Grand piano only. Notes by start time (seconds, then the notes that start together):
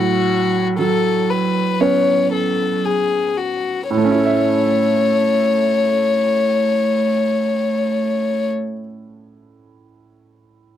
Already playing: A2
0.79 F#3
1.80 B3 C#4 B4
3.91 A2
3.97 A3
4.04 C#4
4.11 E4
4.18 A4
4.25 E5